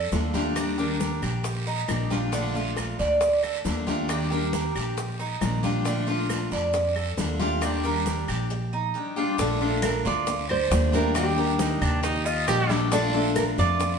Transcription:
Already playing: cuban tres A4
0.12 upright bass D#2, steel-string acoustic guitar D3 A3 D4 F4, high bongo, low bongo, high conga, short guiro, maracas
0.34 steel-string acoustic guitar A3 D4 F4, cuban tres G4, high bongo, high conga, short guiro, maracas
0.55 steel-string acoustic guitar D#3 G3 D4 G4, high bongo, high conga, long guiro, claves, maracas
0.78 steel-string acoustic guitar G3 D4 G4, cuban tres A#4, high bongo, high conga, maracas
1.00 high bongo, high conga, short guiro, maracas
1.22 upright bass A#1, cuban tres G4, high conga, short guiro, claves, maracas
1.44 muted steel-string acoustic guitar stroke, high bongo, high conga, long guiro, maracas
1.66 cuban tres D#4, high bongo, high conga, maracas
1.88 upright bass A#1, steel-string acoustic guitar D#3 G3 D4 G4, high bongo, low bongo, high conga, short guiro, claves, maracas
2.10 steel-string acoustic guitar G3 D4 G4, cuban tres F4, high bongo, high conga, short guiro, maracas
2.32 steel-string acoustic guitar D3 A3 D4 F4, cuban tres D4, high bongo, long guiro, maracas
2.54 steel-string acoustic guitar A3 D4 F4, cuban tres F4, high bongo, high conga, maracas
2.76 high bongo, high conga, short guiro, claves, maracas
2.99 upright bass D2, cuban tres D5, high conga, short guiro, maracas
3.20 muted steel-string acoustic guitar stroke, high bongo, high conga, long guiro, maracas
3.43 cuban tres A4, high bongo, high conga, claves, maracas
3.64 upright bass D#2, steel-string acoustic guitar D3 A3 D4 F4, high bongo, low bongo, high conga, short guiro, maracas
3.87 steel-string acoustic guitar A3 D4 F4, cuban tres G4, high bongo, high conga, short guiro, maracas
4.09 steel-string acoustic guitar D#3 G3 D4 G4, high bongo, high conga, long guiro, claves, maracas
4.31 steel-string acoustic guitar G3 D4 G4, cuban tres A#4, high bongo, high conga, maracas
4.53 high bongo, high conga, short guiro, maracas
4.75 upright bass A#1, cuban tres G4, high conga, short guiro, claves, maracas
4.97 muted steel-string acoustic guitar stroke, high bongo, high conga, long guiro, maracas
5.19 cuban tres D#4, high bongo, high conga, maracas
5.41 upright bass A#1, steel-string acoustic guitar D#3 G3 D4 G4, high bongo, low bongo, high conga, short guiro, claves, maracas
5.63 steel-string acoustic guitar G3 D4 G4, cuban tres F4, high bongo, high conga, short guiro, maracas
5.85 steel-string acoustic guitar D3 A3 D4 F4, cuban tres D4, high bongo, high conga, long guiro, maracas
6.07 steel-string acoustic guitar A3 D4 F4, cuban tres F4, high bongo, high conga, maracas
6.29 high bongo, high conga, short guiro, claves, maracas
6.51 upright bass F2, cuban tres D5, high conga, short guiro, maracas
6.73 muted steel-string acoustic guitar stroke, high bongo, high conga, long guiro, maracas
6.96 cuban tres A4, high bongo, high conga, claves, maracas
7.17 upright bass D#2, steel-string acoustic guitar D3 A3 D4 F4, high bongo, low bongo, high conga, short guiro, maracas
7.39 steel-string acoustic guitar A3 D4 F4, cuban tres G4, high bongo, high conga, short guiro, maracas
7.61 steel-string acoustic guitar D#3 G3 D4 G4, high bongo, high conga, long guiro, claves, maracas
7.83 steel-string acoustic guitar G3 D4 G4, cuban tres A#4, high bongo, high conga, maracas
8.06 high bongo, high conga, short guiro, maracas
8.28 upright bass A#1, cuban tres G4, high conga, short guiro, claves, maracas
8.50 muted steel-string acoustic guitar stroke
8.73 cuban tres D#4
8.94 steel-string acoustic guitar D#3 G3 D4 G4
9.16 steel-string acoustic guitar G3 D4 G4, cuban tres F4
9.38 upright bass A#1, steel-string acoustic guitar D3 A3 D4 F4, cuban tres D4, nylon-string guitar A4, high bongo, high conga, long guiro, maracas
9.60 steel-string acoustic guitar A3 D4 F4, cuban tres A4, high bongo, high conga
9.82 nylon-string guitar A#4, high bongo, high conga, short guiro, claves, maracas
10.05 upright bass D2, cuban tres F4, nylon-string guitar D5, high conga, short guiro, maracas
10.27 muted steel-string acoustic guitar stroke, high bongo, high conga, long guiro, maracas
10.49 cuban tres D4, nylon-string guitar C5, high bongo, high conga, claves
10.70 upright bass D#2, steel-string acoustic guitar D3 A3 D4 F4, high bongo, low bongo, high conga, short guiro, maracas
10.92 steel-string acoustic guitar A3 D4 F4, cuban tres G4, nylon-string guitar A#4, high bongo, high conga, short guiro, maracas
11.14 steel-string acoustic guitar D#3 G3 D4 G4, nylon-string guitar G4, high bongo, high conga, long guiro, claves, maracas
11.36 steel-string acoustic guitar G3 D4 G4, cuban tres A#4, high bongo, high conga
11.59 trumpet D#4, high bongo, high conga, short guiro, maracas
11.81 upright bass D#2, trumpet D4, cuban tres G4, high conga, low conga, short guiro, claves, maracas
12.03 trumpet D#4, muted steel-string acoustic guitar stroke, high bongo, high conga, long guiro, maracas
12.26 trumpet F4, cuban tres D#5, high bongo, high conga, maracas
12.47 upright bass A#1, steel-string acoustic guitar D#3 G3 D4 G4, trumpet G4, high bongo, low bongo, high conga, short guiro, claves, maracas
12.69 steel-string acoustic guitar G3 D4 G4, cuban tres A4, high bongo, high conga, short guiro, maracas
12.91 steel-string acoustic guitar D3 A3 D4 F4, cuban tres D4, nylon-string guitar A4, high bongo, high conga, long guiro, maracas
13.13 steel-string acoustic guitar A3 D4 F4, cuban tres A4, high bongo, high conga
13.36 nylon-string guitar A#4, high bongo, high conga, short guiro, claves, maracas
13.58 upright bass F2, cuban tres F4, nylon-string guitar D5, high conga, short guiro, maracas
13.79 muted steel-string acoustic guitar stroke, high bongo, high conga, long guiro, maracas

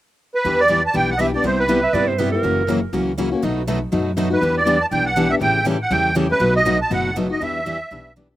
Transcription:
0.35 accordion B4
0.45 upright bass E2, steel-string acoustic guitar E3 G3 B3 D4 E4 G4 B4
0.60 accordion D5
0.68 steel-string acoustic guitar E3 G3 B3 D4 E4 G4 B4
0.86 accordion A5
0.94 upright bass B1, steel-string acoustic guitar E3 G3 B3 D4 E4 G4 B4, accordion G5
1.11 accordion F#5
1.18 steel-string acoustic guitar E3 G3 B3 D4 E4 G4 B4, accordion D#5 E5
1.34 steel-string acoustic guitar B3 D4 G4, accordion D5
1.44 upright bass C2, steel-string acoustic guitar C3 G3 B3 E4 G4, accordion C5
1.59 accordion B4
1.68 steel-string acoustic guitar C3 G3 B3 E4 G4
1.83 clarinet E5
1.93 upright bass G2, steel-string acoustic guitar C3 G3 B3 E4 G4, clarinet D5
2.08 clarinet C5
2.18 steel-string acoustic guitar C3 G3 B3 E4 G4, clarinet B4
2.32 steel-string acoustic guitar B3 E4 G4, clarinet A#4
2.43 upright bass F#1, steel-string acoustic guitar C#3 E3 F#3 A#3 C#4 E4 F#4 A#4
2.67 steel-string acoustic guitar C#3 E3 F#3 A#3 C#4 E4 F#4 A#4
2.92 upright bass C#2, steel-string acoustic guitar C#3 E3 F#3 A#3 C#4 E4 F#4 A#4
3.18 steel-string acoustic guitar C#3 E3 F#3 A#3 C#4 E4 F#4 A#4
3.31 steel-string acoustic guitar A#3 C#4 F#4
3.43 upright bass B1, steel-string acoustic guitar B2 F#3 A3 D#4 F#4 B4
3.67 steel-string acoustic guitar B2 F#3 A3 D#4 F#4 B4
3.92 upright bass F#2, steel-string acoustic guitar B2 F#3 A3 D#4 F#4 B4
4.16 steel-string acoustic guitar B2 F#3 A3 D#4 F#4 B4
4.30 steel-string acoustic guitar A3 D#4 F#4, accordion B4
4.41 upright bass E2, steel-string acoustic guitar E3 G3 B3 D4 E4 G4 B4
4.57 accordion D5
4.65 steel-string acoustic guitar E3 G3 B3 D4 E4 G4 B4
4.81 accordion A5
4.91 upright bass B1, steel-string acoustic guitar E3 G3 B3 D4 E4 G4 B4, accordion G5
5.06 accordion F#5
5.16 steel-string acoustic guitar E3 G3 B3 D4 E4 G4 B4
5.29 steel-string acoustic guitar B3 D4 G4, accordion E5
5.40 upright bass A1, steel-string acoustic guitar C#3 E3 G3 A3 C#4 E4 G4 A4, accordion G5
5.65 steel-string acoustic guitar C#3 E3 G3 A3 C#4 E4 G4 A4
5.82 accordion F#5
5.90 upright bass E2, steel-string acoustic guitar C#3 E3 G3 A3 C#4 E4 G4 A4, accordion G5
6.15 steel-string acoustic guitar C#3 E3 G3 A3 C#4 E4 G4 A4
6.29 steel-string acoustic guitar A3 G4, accordion B4
6.40 upright bass B1, steel-string acoustic guitar B2 F#3 A3 D#4 F#4 B4
6.56 accordion D#5
6.65 steel-string acoustic guitar B2 F#3 A3 D#4 F#4 B4
6.82 accordion A5
6.90 upright bass F#1, steel-string acoustic guitar B2 F#3 A3 D#4 F#4 B4, accordion F#5
7.16 steel-string acoustic guitar B2 F#3 A3 D#4 F#4 B4
7.29 steel-string acoustic guitar A3 D#4 F#4, accordion D#5
7.40 upright bass E2, steel-string acoustic guitar E3 G3 B3 D4 E4 G4 B4, accordion E5
7.66 steel-string acoustic guitar E3 G3 B3 D4 E4 G4 B4
7.91 upright bass B1, steel-string acoustic guitar E3 G3 B3 D4 E4 G4 B4
8.16 steel-string acoustic guitar E3 G3 B3 D4 E4 G4 B4

